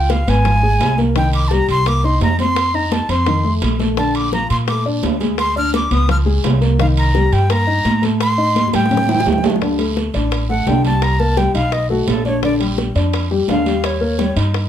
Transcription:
Already playing: C#2 F4 F5 G5
0.10 F5, high bongo, high conga, high timbale, short guiro
0.27 G#1 B3 B4 G#5, high bongo, high conga, high timbale, short guiro
0.45 F3 F4, high bongo, high conga, high timbale, long guiro
0.63 G#3 G#4, high bongo, high conga
0.80 C2, high bongo, low bongo, high conga, high timbale, low timbale, short guiro
0.98 A#3 A#4, high conga, short guiro
1.16 D#3 D#4 G5, high bongo, high timbale, long guiro
1.33 D6, high conga, high timbale
1.48 G3 G4 A5, high bongo, high conga, short guiro
1.53 A#5
1.68 C2 C6, high bongo, high conga, high timbale, short guiro
1.86 A#3 A#4 D6, high bongo, high conga, high timbale, long guiro
2.04 D#4 D#5 C6, high bongo, high conga
2.21 F2 A#5, high bongo, low bongo, high conga, high timbale, low timbale, short guiro
2.39 C4 C5 C6, high conga, high timbale, short guiro
2.56 high bongo, high conga, high timbale, long guiro
2.74 D#4 D#5 A#5, high conga
2.92 A5, high bongo, high conga, high timbale, short guiro
3.09 F2 C4 C5 C6, high bongo, high conga, high timbale, short guiro
3.26 D#3 D#4, high bongo, high conga, high timbale, long guiro
3.44 A3 A4, high bongo, high conga
3.62 A#1, high bongo, low bongo, high conga, high timbale, short guiro
3.80 A3 A4, high conga, short guiro
3.97 D3 D4 A5, high bongo, high conga, high timbale, long guiro
4.15 D6, high conga, high timbale
4.32 F3 F4 A#5, high bongo, high conga, short guiro
4.50 A#2 C6, high bongo, high conga, high timbale, short guiro
4.67 A3 A4 D6, high bongo, high conga, high timbale, long guiro
4.85 D4 D5, high bongo, high conga
5.03 D2, high bongo, low bongo, high conga, high timbale, low timbale, short guiro
5.20 G#3 G#4, high conga, high timbale, short guiro
5.38 C6, high bongo, high conga, high timbale, long guiro
5.56 D4 D5 F6, high conga
5.74 D6, high bongo, high conga, high timbale, short guiro
5.91 C#2 B3 B4 D#6, high bongo, high conga, high timbale, short guiro
6.08 F3 F4 F6, high bongo, high conga, high timbale, long guiro
6.26 G#3 G#4, high bongo, high conga
6.44 C2, high bongo, low bongo, high conga, high timbale, low timbale, short guiro
6.61 A#3 A#4, high conga, short guiro
6.79 D#3 D#4 F5, high bongo, high conga, high timbale, long guiro
6.97 A#5, high conga, high timbale
7.15 G3 G4, high bongo, high conga, short guiro
7.32 G2 G5, high bongo, high conga, high timbale, short guiro
7.50 A#3 A#4 A#5, high bongo, high conga, high timbale, long guiro
7.67 D#4 D#5, high bongo, high conga
7.85 A2, high bongo, low bongo, high conga, high timbale, short guiro
8.02 A3 A4, high conga, high timbale, short guiro
8.20 C6, high bongo, high conga, high timbale, long guiro
8.38 D#4 D#5, high conga
8.56 high bongo, high conga, high timbale, short guiro
8.68 high conga
8.73 A2 G3 G4 G5, high bongo, high timbale, short guiro
8.79 high conga
8.85 high bongo
8.90 C#3 C#4, low conga, high timbale, long guiro
8.97 high bongo
9.03 high conga
9.08 E3 E4, low bongo, high timbale
9.15 low conga
9.20 low bongo
9.26 D2, low conga, low timbale, short guiro
9.32 low bongo
9.38 low conga
9.43 A3 A4, low timbale, short guiro
9.50 low conga
9.56 low bongo
9.61 D3 D4, high bongo, high conga, high timbale, long guiro
9.79 A3 A4, high conga, high timbale
9.97 high bongo, high conga, short guiro
10.14 A1 D4 D5, high bongo, high conga, high timbale, short guiro
10.31 high bongo, high conga, high timbale, long guiro
10.49 A3 A4 F#5, high bongo, high conga
10.66 C2 D3 D4 G5, high bongo, low bongo, high conga, high timbale, low timbale, short guiro
10.84 G3 G4 A5, high conga, high timbale, short guiro
11.02 A#5, high bongo, high conga, high timbale, long guiro
11.20 A#3 A#4 A5, high conga
11.37 G3 G4 G5, high bongo, high conga, high timbale, short guiro
11.54 B1 D#4 D#5 F5, high bongo, high conga, high timbale, short guiro
11.72 D#5, high bongo, high conga, high timbale, long guiro
11.90 A3 F#4 A4, high bongo, high conga
12.07 A#1 A4, high bongo, low bongo, high conga, high timbale, low timbale, short guiro
12.25 D4 C#5 D5, high conga, short guiro
12.43 D3 D4 D5, high bongo, high conga, high timbale, long guiro
12.60 G3 G4, high conga, high timbale
12.78 high bongo, high conga, short guiro
12.95 F2 D4 D5, high bongo, high conga, high timbale, short guiro
13.13 high bongo, high conga, high timbale, long guiro
13.31 G3 G4, high bongo, high conga
13.48 D#2 D3 D4 F5, high bongo, low bongo, high conga, high timbale, low timbale, short guiro
13.66 G3 G4, high conga, high timbale, short guiro
13.84 C#5, high bongo, high conga, high timbale, long guiro
14.01 A#3 A#4, high conga
14.18 G3 G4, high bongo, high conga, high timbale, short guiro
14.36 G2 D#4 D#5, high bongo, high conga, high timbale, short guiro
14.54 high bongo, high conga, high timbale, long guiro

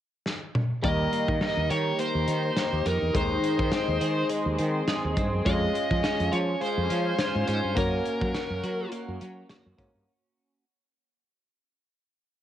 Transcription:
0.26 snare
0.55 mid tom
0.82 D#2 D#3 G3 A#3 D#4 G4 A#4 D#5 A#5, kick, closed hi-hat
1.12 A#3, closed hi-hat
1.28 D#3, kick
1.41 D#4, snare, closed hi-hat
1.57 D#2
1.70 D#3 G4 C#5, closed hi-hat
1.99 A#3 C5, closed hi-hat
2.15 D#2
2.28 D#3 D#4, closed hi-hat
2.56 G4, snare, closed hi-hat
2.72 D#2
2.86 F2 D#4 A#4, closed hi-hat
3.02 E2
3.13 D#2 D#3 G#3 C4 D#4 G#4 C5 C6, kick, closed hi-hat
3.43 G#3, closed hi-hat
3.59 D#3, kick
3.72 C4, snare, closed hi-hat
3.88 D#2
4.01 D#3 G#4, closed hi-hat
4.30 G#3, closed hi-hat
4.46 D#2
4.59 D#3 C4, closed hi-hat
4.88 G#4, snare, closed hi-hat
5.04 D#2
5.17 G2 C4, kick, closed hi-hat
5.33 F#2
5.45 F2 G#3 C#4 F4 D#5 F5 G#5, kick, closed hi-hat
5.74 G#3, closed hi-hat
5.91 F3, kick
6.03 C#4, snare, closed hi-hat
6.20 F2, closed hi-hat
6.32 F3 F4 C#5, closed hi-hat
6.61 G#3 C5, closed hi-hat
6.78 F2
6.90 F3 C#4, closed hi-hat
7.19 F4, snare, closed hi-hat
7.35 G#2
7.48 G#2 C#4 C5, closed hi-hat
7.64 G2
7.75 F#2 A#3 C#4 F#4 A#4 C#5 F#5, kick, closed hi-hat
8.05 A#3, closed hi-hat
8.21 F#3, kick
8.35 C#4, snare, closed hi-hat
8.50 F#2
8.63 F#3 F#4, closed hi-hat
8.92 A#3, closed hi-hat
9.08 F#2
9.21 F#3 C#4, closed hi-hat
9.49 F#4, snare, closed hi-hat
9.66 F#2
9.78 G#2 A#3 C#4 F#4 C#5, kick, closed hi-hat
9.95 G2

